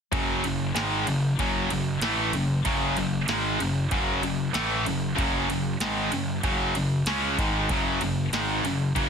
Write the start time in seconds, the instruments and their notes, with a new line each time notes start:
0.12 picked electric bass F#1, distorted electric guitar F#2 C#3 F#3, kick, ride
0.44 picked electric bass F#1, distorted electric guitar F#2 C#3, ride
0.75 picked electric bass G#1, distorted electric guitar G#2 D#3 G#3, snare, ride
1.06 picked electric bass F#1, distorted electric guitar F#2 C#3, ride
1.39 picked electric bass F#1, distorted electric guitar F#2 C#3 F#3, kick, ride
1.70 picked electric bass F#1, distorted electric guitar F#2 C#3, ride
2.01 picked electric bass A1, distorted electric guitar A2 E3 A3, snare, ride
2.33 picked electric bass F#1, distorted electric guitar F#2 C#3, ride
2.65 picked electric bass F#1, distorted electric guitar F#2 C#3 F#3, kick, ride
2.97 picked electric bass F#1, distorted electric guitar F#2 C#3, ride
3.28 picked electric bass G#1, distorted electric guitar G#2 D#3 G#3, snare, ride
3.60 picked electric bass F#1, distorted electric guitar F#2 C#3, ride
3.91 picked electric bass F#1, distorted electric guitar F#2 C#3 F#3, kick, ride
4.23 picked electric bass F#1, distorted electric guitar F#2 C#3, ride
4.54 picked electric bass A1, distorted electric guitar A2 E3 A3, snare, ride
4.85 picked electric bass F#1, distorted electric guitar F#2 C#3, ride
5.15 picked electric bass F#1, distorted electric guitar F#2 C#3 F#3, kick, ride
5.49 picked electric bass F#1, distorted electric guitar F#2 C#3, ride
5.80 picked electric bass G#1, distorted electric guitar G#2 D#3 G#3, snare, ride
6.12 picked electric bass F#1, distorted electric guitar F#2 C#3, ride
6.43 picked electric bass F#1, distorted electric guitar F#2 C#3 F#3, kick, ride
6.75 picked electric bass F#1, distorted electric guitar F#2 C#3, ride
7.06 picked electric bass C#2, distorted electric guitar C#3 G#3 C#4, snare, ride
7.38 picked electric bass G#1, distorted electric guitar G#2 D#3 G#3, kick, ride
7.69 picked electric bass F#1, distorted electric guitar F#2 C#3 F#3, kick, ride
8.01 picked electric bass F#1, distorted electric guitar F#2 C#3, ride
8.32 picked electric bass G#1, distorted electric guitar G#2 D#3 G#3, snare, ride
8.64 picked electric bass F#1, distorted electric guitar F#2 C#3, ride
8.95 picked electric bass F#1, distorted electric guitar F#2 C#3 F#3, kick, ride